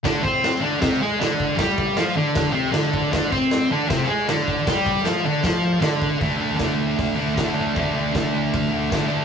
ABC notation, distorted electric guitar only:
X:1
M:4/4
L:1/8
Q:1/4=156
K:Clyd
V:1 name="Distorted electric guitar"
[D,D] [Cc]2 [D,D] [C,C] [^G,^G] [D,D]2 | [G,G]2 [=F,=F] [D,D]2 [C,C] [D,D]2 | [D,D] [Cc]2 [D,D] [C,C] [^G,^G] [D,D]2 | [G,G]2 [=F,=F] [D,D] [F,F]2 [D,D]2 |
[D,A,D] [A,D] [D,A,D]3 [A,D] [D,A,D] [A,D] | [D,A,D] [A,D] [D,A,D]3 [A,D] [D,A,D] [A,D] |]